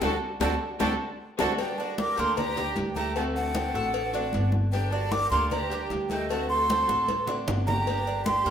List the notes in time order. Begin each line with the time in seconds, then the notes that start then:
0.01 D2 A3 C4 D4 F#4 A4 A5, high bongo, high conga
0.40 D2 A3 C4 D4 F#4 A4 A5, high bongo, high conga
0.79 D2 A3 C4 D4 F#4 A4 A5, high bongo, high conga
1.39 D2 A3 C4 D4 F#4 A4 A5, high bongo, high conga
1.58 D3 G3 A#3 D4 G4 G5, cowbell, high conga
1.78 D4 F#4 A5, high conga
1.97 G3 A#3 D4 G4 A#4 D6, cowbell, high conga
2.16 D2 G3 A#3 D4 G4 A4 C6, cowbell, high conga
2.37 D4 G4 A#5, muted nylon-string guitar stroke, cowbell, high conga, low conga
2.56 G3 A#3 D4 G4, cowbell, high conga, low conga
2.75 D2 G3 A#3 D4 G4, cowbell, high conga
2.96 A3 G4 A#5, cowbell, high conga
3.15 D3 A3 C4 F#4 A5, cowbell, high conga
3.35 D4 F#5, high conga
3.54 D3 A3 C4 F#4, cowbell, high conga
3.74 A1 A3 C4 F#4 A4, high conga
3.93 muted nylon-string guitar stroke, cowbell, high conga
4.13 A3 C4 D4 F#4, cowbell, high conga
4.33 G1 A3 C4 F#4, cowbell, high conga
4.52 high conga
4.72 D3 G3 A#3 D4 G4 G5, cowbell, high conga
4.91 D4 F#4 A5, high conga
5.11 G3 A#3 D4 G4 A#4 D6, cowbell, high conga
5.30 D2 G3 A#3 D4 G4 A4 C6, cowbell, high conga
5.51 D4 G4 A#5, muted nylon-string guitar stroke, cowbell, high conga, low conga
5.70 G3 A#3 D4 G4, cowbell, high conga
5.90 D2 G3 A#3 D4 G4, cowbell, high conga
6.10 A3 D#4 G5, cowbell, high conga
6.29 D3 A3 C4 F#4 A5, cowbell, high conga
6.49 A4 C6, high conga
6.69 D3 A3 C4 F#4, cowbell, high conga
6.87 A1 A3 C4 F#4 A4, high conga
7.08 muted nylon-string guitar stroke, cowbell, high conga
7.27 A3 C4 D4 F#4, cowbell, low conga
7.47 G1 D3 A3 C4 F#4, cowbell, low conga
7.67 G4 A#5, low conga
7.87 D3 G3 A#3 D4 G4, cowbell, high conga
8.07 D4, high conga
8.25 G3 A#3 D4 G4 C6, cowbell, high conga
8.44 G2 G3 A#3 D4 G4, cowbell, high conga